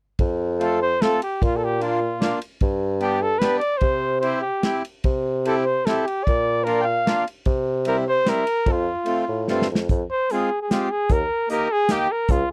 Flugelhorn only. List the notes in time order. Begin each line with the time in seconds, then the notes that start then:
0.62 A4
0.82 C5
1.02 A4
1.23 G4
1.44 F4
1.57 A4
1.64 G4
1.84 F4
3.02 G4
3.22 A4
3.39 B4
3.59 D5
3.78 C5
4.20 C5
4.42 G4
5.46 A4
5.64 C5
5.86 A4
6.06 G4
6.24 D5
6.64 A#4
6.81 F5 G5
7.88 A#4
8.09 C5
8.30 A#4
8.72 F4
10.11 C5
10.31 G#4
10.61 G#4
10.71 G4
10.91 G#4
11.12 A#4
11.52 A#4
11.72 G#4
11.92 G4
12.12 A#4
12.31 F4